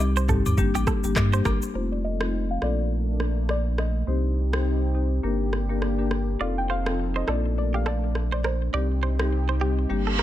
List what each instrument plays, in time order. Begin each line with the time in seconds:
Already playing: sub bass C2
0.00 high agogo, low woodblock, shaker
0.17 clean electric guitar C5, shaker
0.28 marimba G3 C4 D#4 G4, clean electric guitar A4, kick, mid tom, shaker
0.46 sub bass D#2, mid tom, high agogo, shaker
0.58 sub bass G1, marimba G3 A#3 D4 G4, kick, shaker
0.75 sub bass A1, clean electric guitar G4, high agogo, shaker
0.87 clean electric guitar A4, kick, cross-stick, shaker
1.04 sub bass G1, marimba G3 A#3 D4 G4, shaker
1.16 sub bass G2, kick, cross-stick, clap, high agogo, low woodblock, shaker
1.33 marimba G3 A#3 D4 G4, clean electric guitar C5, shaker
1.45 sub bass G1, clean electric guitar A#4, kick, cross-stick, high agogo, shaker
1.62 shaker
1.74 sub bass F1, analog synth pad F3 C4 D#4 A4, marimba A3 C4 D#4 F4, synth pluck C5
1.92 synth pluck D5
2.04 synth pluck D#5
2.20 marimba A3 C4 D#4 F4, cross-stick
2.51 synth pluck F5
2.62 sub bass A#1, analog synth pad A3 A#3 D4, marimba A#3 D4 F4 A4, synth pluck D5, cross-stick
3.20 cross-stick
3.49 synth pluck D5, cross-stick
3.78 synth pluck D#5, cross-stick
4.07 sub bass C2, analog synth pad C3 C4 D#4 G4, marimba C4 D#4 G4 C5
4.53 marimba C4 D#4 G4 C5, cross-stick
4.94 marimba C4 D#4 G4 C5
5.23 sub bass G1, marimba A#3 D4 G4 A#4, analog synth pad A#3 D4 G4
5.53 cross-stick
5.69 marimba A#3 D4 G4 A#4
5.82 cross-stick
5.98 marimba A#3 D4 G4 A#4
6.11 cross-stick
6.40 sub bass F1, analog synth pad F3 C4 D#4 A4, marimba C4 D#4 F4 A4, clean electric guitar D5, synth pluck F5
6.58 synth pluck G5
6.70 clean electric guitar C5, synth pluck F5
6.86 marimba C4 D#4 F4 A4, cross-stick
7.16 clean electric guitar C5, synth pluck D#5
7.27 sub bass A#1, analog synth pad A3 A#3 D4, marimba A#3 D4 F4 A4, clean electric guitar A4, synth pluck D5, cross-stick
7.58 synth pluck D5
7.74 clean electric guitar G4, synth pluck F5
7.86 clean electric guitar A4, synth pluck D5, cross-stick
8.15 cross-stick
8.32 clean electric guitar C5, synth pluck D5
8.44 clean electric guitar A#4, synth pluck C5, cross-stick
8.73 sub bass C2, analog synth pad C3 C4 D#4 G4, marimba G3 C4 D#4 G4, clean electric guitar D5
9.03 clean electric guitar C5
9.19 marimba G3 C4 D#4 G4, cross-stick
9.49 clean electric guitar C5
9.60 marimba G3 C4 D#4 G4, clean electric guitar G4
9.89 sub bass G1, marimba G3 A#3 D4 G4, analog synth pad A#3 D4, reverse cymbal
10.07 clean electric guitar A4
10.19 clean electric guitar A#4, cross-stick